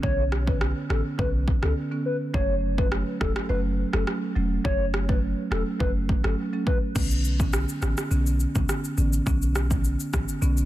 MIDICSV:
0, 0, Header, 1, 5, 480
1, 0, Start_track
1, 0, Key_signature, 2, "minor"
1, 0, Tempo, 576923
1, 29, Time_signature, 4, 2, 24, 8
1, 8863, End_track
2, 0, Start_track
2, 0, Title_t, "Soft synth lead"
2, 0, Program_c, 0, 80
2, 27, Note_on_c, 0, 73, 114
2, 198, Note_off_c, 0, 73, 0
2, 395, Note_on_c, 0, 71, 75
2, 475, Note_off_c, 0, 71, 0
2, 751, Note_on_c, 0, 69, 84
2, 840, Note_off_c, 0, 69, 0
2, 989, Note_on_c, 0, 71, 84
2, 1079, Note_off_c, 0, 71, 0
2, 1360, Note_on_c, 0, 69, 73
2, 1439, Note_off_c, 0, 69, 0
2, 1711, Note_on_c, 0, 71, 94
2, 1800, Note_off_c, 0, 71, 0
2, 1950, Note_on_c, 0, 73, 107
2, 2119, Note_off_c, 0, 73, 0
2, 2316, Note_on_c, 0, 71, 78
2, 2396, Note_off_c, 0, 71, 0
2, 2669, Note_on_c, 0, 69, 79
2, 2759, Note_off_c, 0, 69, 0
2, 2905, Note_on_c, 0, 71, 88
2, 2997, Note_off_c, 0, 71, 0
2, 3274, Note_on_c, 0, 69, 79
2, 3355, Note_off_c, 0, 69, 0
2, 3868, Note_on_c, 0, 73, 115
2, 4038, Note_off_c, 0, 73, 0
2, 4237, Note_on_c, 0, 71, 77
2, 4317, Note_off_c, 0, 71, 0
2, 4589, Note_on_c, 0, 69, 84
2, 4679, Note_off_c, 0, 69, 0
2, 4827, Note_on_c, 0, 71, 82
2, 4918, Note_off_c, 0, 71, 0
2, 5195, Note_on_c, 0, 69, 72
2, 5275, Note_off_c, 0, 69, 0
2, 5549, Note_on_c, 0, 71, 94
2, 5639, Note_off_c, 0, 71, 0
2, 8863, End_track
3, 0, Start_track
3, 0, Title_t, "Marimba"
3, 0, Program_c, 1, 12
3, 24, Note_on_c, 1, 50, 90
3, 27, Note_on_c, 1, 59, 82
3, 30, Note_on_c, 1, 61, 96
3, 165, Note_off_c, 1, 50, 0
3, 167, Note_off_c, 1, 59, 0
3, 168, Note_off_c, 1, 61, 0
3, 391, Note_on_c, 1, 50, 71
3, 394, Note_on_c, 1, 59, 69
3, 396, Note_on_c, 1, 61, 85
3, 520, Note_off_c, 1, 50, 0
3, 521, Note_off_c, 1, 59, 0
3, 522, Note_off_c, 1, 61, 0
3, 744, Note_on_c, 1, 50, 71
3, 746, Note_on_c, 1, 59, 62
3, 749, Note_on_c, 1, 61, 76
3, 885, Note_off_c, 1, 50, 0
3, 887, Note_off_c, 1, 59, 0
3, 888, Note_off_c, 1, 61, 0
3, 984, Note_on_c, 1, 50, 86
3, 988, Note_on_c, 1, 59, 79
3, 989, Note_on_c, 1, 61, 91
3, 1125, Note_off_c, 1, 50, 0
3, 1127, Note_off_c, 1, 59, 0
3, 1128, Note_off_c, 1, 61, 0
3, 1351, Note_on_c, 1, 50, 78
3, 1354, Note_on_c, 1, 59, 67
3, 1357, Note_on_c, 1, 61, 83
3, 1480, Note_off_c, 1, 50, 0
3, 1481, Note_off_c, 1, 59, 0
3, 1483, Note_off_c, 1, 61, 0
3, 1592, Note_on_c, 1, 50, 73
3, 1594, Note_on_c, 1, 59, 69
3, 1597, Note_on_c, 1, 61, 77
3, 1720, Note_off_c, 1, 50, 0
3, 1721, Note_off_c, 1, 59, 0
3, 1723, Note_off_c, 1, 61, 0
3, 1944, Note_on_c, 1, 54, 87
3, 1946, Note_on_c, 1, 57, 80
3, 1949, Note_on_c, 1, 61, 100
3, 2086, Note_off_c, 1, 54, 0
3, 2087, Note_off_c, 1, 57, 0
3, 2088, Note_off_c, 1, 61, 0
3, 2313, Note_on_c, 1, 54, 77
3, 2316, Note_on_c, 1, 57, 70
3, 2319, Note_on_c, 1, 61, 85
3, 2441, Note_off_c, 1, 54, 0
3, 2442, Note_off_c, 1, 57, 0
3, 2444, Note_off_c, 1, 61, 0
3, 2666, Note_on_c, 1, 54, 71
3, 2668, Note_on_c, 1, 57, 64
3, 2671, Note_on_c, 1, 61, 78
3, 2806, Note_off_c, 1, 54, 0
3, 2807, Note_off_c, 1, 57, 0
3, 2809, Note_off_c, 1, 61, 0
3, 2903, Note_on_c, 1, 54, 88
3, 2906, Note_on_c, 1, 57, 77
3, 2908, Note_on_c, 1, 61, 98
3, 3045, Note_off_c, 1, 54, 0
3, 3046, Note_off_c, 1, 57, 0
3, 3047, Note_off_c, 1, 61, 0
3, 3271, Note_on_c, 1, 54, 75
3, 3273, Note_on_c, 1, 57, 69
3, 3276, Note_on_c, 1, 61, 83
3, 3399, Note_off_c, 1, 54, 0
3, 3401, Note_off_c, 1, 57, 0
3, 3402, Note_off_c, 1, 61, 0
3, 3625, Note_on_c, 1, 54, 78
3, 3628, Note_on_c, 1, 57, 71
3, 3630, Note_on_c, 1, 61, 82
3, 3766, Note_off_c, 1, 54, 0
3, 3767, Note_off_c, 1, 57, 0
3, 3768, Note_off_c, 1, 61, 0
3, 3865, Note_on_c, 1, 54, 92
3, 3867, Note_on_c, 1, 57, 83
3, 3869, Note_on_c, 1, 61, 101
3, 4006, Note_off_c, 1, 54, 0
3, 4007, Note_off_c, 1, 57, 0
3, 4008, Note_off_c, 1, 61, 0
3, 4231, Note_on_c, 1, 54, 74
3, 4234, Note_on_c, 1, 57, 64
3, 4236, Note_on_c, 1, 61, 79
3, 4360, Note_off_c, 1, 54, 0
3, 4361, Note_off_c, 1, 57, 0
3, 4362, Note_off_c, 1, 61, 0
3, 4585, Note_on_c, 1, 54, 71
3, 4588, Note_on_c, 1, 57, 66
3, 4590, Note_on_c, 1, 61, 79
3, 4726, Note_off_c, 1, 54, 0
3, 4727, Note_off_c, 1, 57, 0
3, 4729, Note_off_c, 1, 61, 0
3, 4823, Note_on_c, 1, 54, 85
3, 4825, Note_on_c, 1, 57, 80
3, 4827, Note_on_c, 1, 61, 98
3, 4965, Note_off_c, 1, 54, 0
3, 4966, Note_off_c, 1, 57, 0
3, 4967, Note_off_c, 1, 61, 0
3, 5190, Note_on_c, 1, 54, 77
3, 5193, Note_on_c, 1, 57, 67
3, 5196, Note_on_c, 1, 61, 83
3, 5319, Note_off_c, 1, 54, 0
3, 5321, Note_off_c, 1, 57, 0
3, 5322, Note_off_c, 1, 61, 0
3, 5431, Note_on_c, 1, 54, 71
3, 5433, Note_on_c, 1, 57, 65
3, 5435, Note_on_c, 1, 61, 80
3, 5559, Note_off_c, 1, 54, 0
3, 5561, Note_off_c, 1, 57, 0
3, 5562, Note_off_c, 1, 61, 0
3, 5785, Note_on_c, 1, 50, 88
3, 5787, Note_on_c, 1, 59, 83
3, 5790, Note_on_c, 1, 61, 95
3, 5926, Note_off_c, 1, 50, 0
3, 5927, Note_off_c, 1, 59, 0
3, 5928, Note_off_c, 1, 61, 0
3, 6152, Note_on_c, 1, 50, 75
3, 6154, Note_on_c, 1, 59, 65
3, 6156, Note_on_c, 1, 61, 85
3, 6280, Note_off_c, 1, 50, 0
3, 6281, Note_off_c, 1, 59, 0
3, 6282, Note_off_c, 1, 61, 0
3, 6505, Note_on_c, 1, 50, 72
3, 6507, Note_on_c, 1, 59, 63
3, 6509, Note_on_c, 1, 61, 76
3, 6646, Note_off_c, 1, 50, 0
3, 6647, Note_off_c, 1, 59, 0
3, 6648, Note_off_c, 1, 61, 0
3, 6745, Note_on_c, 1, 50, 87
3, 6748, Note_on_c, 1, 59, 78
3, 6750, Note_on_c, 1, 61, 93
3, 6886, Note_off_c, 1, 50, 0
3, 6887, Note_off_c, 1, 59, 0
3, 6888, Note_off_c, 1, 61, 0
3, 7112, Note_on_c, 1, 50, 78
3, 7115, Note_on_c, 1, 59, 69
3, 7118, Note_on_c, 1, 61, 82
3, 7240, Note_off_c, 1, 50, 0
3, 7242, Note_off_c, 1, 59, 0
3, 7243, Note_off_c, 1, 61, 0
3, 7466, Note_on_c, 1, 50, 76
3, 7468, Note_on_c, 1, 59, 70
3, 7471, Note_on_c, 1, 61, 81
3, 7606, Note_off_c, 1, 50, 0
3, 7608, Note_off_c, 1, 59, 0
3, 7609, Note_off_c, 1, 61, 0
3, 7708, Note_on_c, 1, 50, 86
3, 7711, Note_on_c, 1, 59, 84
3, 7713, Note_on_c, 1, 61, 104
3, 7848, Note_off_c, 1, 50, 0
3, 7849, Note_off_c, 1, 59, 0
3, 7850, Note_off_c, 1, 61, 0
3, 8074, Note_on_c, 1, 50, 72
3, 8077, Note_on_c, 1, 59, 64
3, 8080, Note_on_c, 1, 61, 82
3, 8201, Note_off_c, 1, 50, 0
3, 8202, Note_off_c, 1, 59, 0
3, 8204, Note_off_c, 1, 61, 0
3, 8429, Note_on_c, 1, 50, 72
3, 8431, Note_on_c, 1, 59, 66
3, 8434, Note_on_c, 1, 61, 77
3, 8568, Note_off_c, 1, 50, 0
3, 8569, Note_off_c, 1, 59, 0
3, 8570, Note_off_c, 1, 61, 0
3, 8666, Note_on_c, 1, 50, 87
3, 8669, Note_on_c, 1, 59, 81
3, 8672, Note_on_c, 1, 61, 102
3, 8807, Note_off_c, 1, 50, 0
3, 8808, Note_off_c, 1, 59, 0
3, 8809, Note_off_c, 1, 61, 0
3, 8863, End_track
4, 0, Start_track
4, 0, Title_t, "808-style bass"
4, 0, Program_c, 2, 38
4, 29, Note_on_c, 2, 35, 110
4, 606, Note_off_c, 2, 35, 0
4, 747, Note_on_c, 2, 33, 83
4, 848, Note_off_c, 2, 33, 0
4, 989, Note_on_c, 2, 35, 103
4, 1278, Note_off_c, 2, 35, 0
4, 1354, Note_on_c, 2, 37, 90
4, 1444, Note_off_c, 2, 37, 0
4, 1948, Note_on_c, 2, 30, 112
4, 2525, Note_off_c, 2, 30, 0
4, 2671, Note_on_c, 2, 28, 89
4, 2770, Note_off_c, 2, 28, 0
4, 2908, Note_on_c, 2, 30, 100
4, 3198, Note_off_c, 2, 30, 0
4, 3276, Note_on_c, 2, 30, 87
4, 3365, Note_off_c, 2, 30, 0
4, 3627, Note_on_c, 2, 28, 94
4, 3817, Note_off_c, 2, 28, 0
4, 3868, Note_on_c, 2, 30, 110
4, 4445, Note_off_c, 2, 30, 0
4, 4586, Note_on_c, 2, 28, 88
4, 4687, Note_off_c, 2, 28, 0
4, 4829, Note_on_c, 2, 30, 98
4, 5118, Note_off_c, 2, 30, 0
4, 5193, Note_on_c, 2, 31, 88
4, 5283, Note_off_c, 2, 31, 0
4, 5788, Note_on_c, 2, 35, 102
4, 6365, Note_off_c, 2, 35, 0
4, 6507, Note_on_c, 2, 33, 91
4, 6608, Note_off_c, 2, 33, 0
4, 6748, Note_on_c, 2, 35, 101
4, 7038, Note_off_c, 2, 35, 0
4, 7118, Note_on_c, 2, 35, 90
4, 7206, Note_off_c, 2, 35, 0
4, 7470, Note_on_c, 2, 33, 99
4, 7658, Note_off_c, 2, 33, 0
4, 7710, Note_on_c, 2, 35, 115
4, 8286, Note_off_c, 2, 35, 0
4, 8433, Note_on_c, 2, 33, 86
4, 8532, Note_off_c, 2, 33, 0
4, 8669, Note_on_c, 2, 35, 112
4, 8863, Note_off_c, 2, 35, 0
4, 8863, End_track
5, 0, Start_track
5, 0, Title_t, "Drums"
5, 28, Note_on_c, 9, 36, 111
5, 111, Note_off_c, 9, 36, 0
5, 268, Note_on_c, 9, 37, 91
5, 351, Note_off_c, 9, 37, 0
5, 395, Note_on_c, 9, 36, 97
5, 478, Note_off_c, 9, 36, 0
5, 508, Note_on_c, 9, 37, 93
5, 592, Note_off_c, 9, 37, 0
5, 751, Note_on_c, 9, 37, 90
5, 834, Note_off_c, 9, 37, 0
5, 989, Note_on_c, 9, 36, 94
5, 1072, Note_off_c, 9, 36, 0
5, 1228, Note_on_c, 9, 36, 89
5, 1311, Note_off_c, 9, 36, 0
5, 1353, Note_on_c, 9, 37, 89
5, 1437, Note_off_c, 9, 37, 0
5, 1948, Note_on_c, 9, 36, 109
5, 2031, Note_off_c, 9, 36, 0
5, 2315, Note_on_c, 9, 36, 94
5, 2398, Note_off_c, 9, 36, 0
5, 2427, Note_on_c, 9, 37, 91
5, 2510, Note_off_c, 9, 37, 0
5, 2670, Note_on_c, 9, 37, 85
5, 2671, Note_on_c, 9, 36, 84
5, 2753, Note_off_c, 9, 37, 0
5, 2754, Note_off_c, 9, 36, 0
5, 2795, Note_on_c, 9, 37, 96
5, 2878, Note_off_c, 9, 37, 0
5, 3273, Note_on_c, 9, 37, 88
5, 3356, Note_off_c, 9, 37, 0
5, 3389, Note_on_c, 9, 37, 90
5, 3472, Note_off_c, 9, 37, 0
5, 3868, Note_on_c, 9, 36, 114
5, 3951, Note_off_c, 9, 36, 0
5, 4109, Note_on_c, 9, 37, 93
5, 4192, Note_off_c, 9, 37, 0
5, 4235, Note_on_c, 9, 36, 99
5, 4318, Note_off_c, 9, 36, 0
5, 4590, Note_on_c, 9, 37, 91
5, 4673, Note_off_c, 9, 37, 0
5, 4829, Note_on_c, 9, 36, 94
5, 4912, Note_off_c, 9, 36, 0
5, 5068, Note_on_c, 9, 36, 88
5, 5151, Note_off_c, 9, 36, 0
5, 5194, Note_on_c, 9, 37, 88
5, 5277, Note_off_c, 9, 37, 0
5, 5547, Note_on_c, 9, 36, 94
5, 5630, Note_off_c, 9, 36, 0
5, 5788, Note_on_c, 9, 36, 108
5, 5788, Note_on_c, 9, 49, 90
5, 5788, Note_on_c, 9, 82, 70
5, 5871, Note_off_c, 9, 36, 0
5, 5872, Note_off_c, 9, 49, 0
5, 5872, Note_off_c, 9, 82, 0
5, 5916, Note_on_c, 9, 82, 56
5, 5999, Note_off_c, 9, 82, 0
5, 6029, Note_on_c, 9, 82, 52
5, 6112, Note_off_c, 9, 82, 0
5, 6155, Note_on_c, 9, 36, 98
5, 6156, Note_on_c, 9, 82, 65
5, 6238, Note_off_c, 9, 36, 0
5, 6239, Note_off_c, 9, 82, 0
5, 6267, Note_on_c, 9, 82, 64
5, 6268, Note_on_c, 9, 37, 98
5, 6351, Note_off_c, 9, 37, 0
5, 6351, Note_off_c, 9, 82, 0
5, 6397, Note_on_c, 9, 82, 54
5, 6480, Note_off_c, 9, 82, 0
5, 6510, Note_on_c, 9, 82, 56
5, 6511, Note_on_c, 9, 37, 90
5, 6593, Note_off_c, 9, 82, 0
5, 6594, Note_off_c, 9, 37, 0
5, 6637, Note_on_c, 9, 82, 80
5, 6638, Note_on_c, 9, 37, 96
5, 6720, Note_off_c, 9, 82, 0
5, 6721, Note_off_c, 9, 37, 0
5, 6750, Note_on_c, 9, 82, 60
5, 6833, Note_off_c, 9, 82, 0
5, 6877, Note_on_c, 9, 82, 57
5, 6960, Note_off_c, 9, 82, 0
5, 6988, Note_on_c, 9, 82, 51
5, 7072, Note_off_c, 9, 82, 0
5, 7116, Note_on_c, 9, 82, 65
5, 7118, Note_on_c, 9, 36, 93
5, 7199, Note_off_c, 9, 82, 0
5, 7201, Note_off_c, 9, 36, 0
5, 7231, Note_on_c, 9, 37, 91
5, 7232, Note_on_c, 9, 82, 82
5, 7314, Note_off_c, 9, 37, 0
5, 7315, Note_off_c, 9, 82, 0
5, 7359, Note_on_c, 9, 82, 51
5, 7442, Note_off_c, 9, 82, 0
5, 7468, Note_on_c, 9, 82, 53
5, 7551, Note_off_c, 9, 82, 0
5, 7597, Note_on_c, 9, 82, 76
5, 7680, Note_off_c, 9, 82, 0
5, 7710, Note_on_c, 9, 36, 108
5, 7710, Note_on_c, 9, 82, 72
5, 7793, Note_off_c, 9, 36, 0
5, 7793, Note_off_c, 9, 82, 0
5, 7839, Note_on_c, 9, 82, 57
5, 7922, Note_off_c, 9, 82, 0
5, 7950, Note_on_c, 9, 37, 92
5, 7950, Note_on_c, 9, 82, 51
5, 8033, Note_off_c, 9, 37, 0
5, 8033, Note_off_c, 9, 82, 0
5, 8076, Note_on_c, 9, 36, 94
5, 8078, Note_on_c, 9, 82, 68
5, 8160, Note_off_c, 9, 36, 0
5, 8161, Note_off_c, 9, 82, 0
5, 8190, Note_on_c, 9, 82, 64
5, 8273, Note_off_c, 9, 82, 0
5, 8319, Note_on_c, 9, 82, 50
5, 8403, Note_off_c, 9, 82, 0
5, 8432, Note_on_c, 9, 82, 59
5, 8433, Note_on_c, 9, 36, 88
5, 8434, Note_on_c, 9, 37, 91
5, 8515, Note_off_c, 9, 82, 0
5, 8516, Note_off_c, 9, 36, 0
5, 8517, Note_off_c, 9, 37, 0
5, 8558, Note_on_c, 9, 82, 80
5, 8641, Note_off_c, 9, 82, 0
5, 8673, Note_on_c, 9, 82, 61
5, 8756, Note_off_c, 9, 82, 0
5, 8798, Note_on_c, 9, 82, 57
5, 8863, Note_off_c, 9, 82, 0
5, 8863, End_track
0, 0, End_of_file